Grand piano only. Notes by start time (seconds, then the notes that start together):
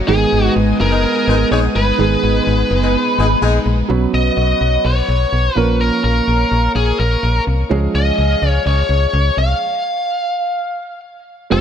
Already playing: F#3 A#3 A#4
0.07 D#3 G#3 B3 G#4
1.98 D#3 G#3 B3 G#4
3.88 F#3 B3 C#4 B4
5.55 F3 A#3 C#4 A#4
7.69 F3 G#3 C#4 G#4
11.50 G#3 C4 F4 G4 C5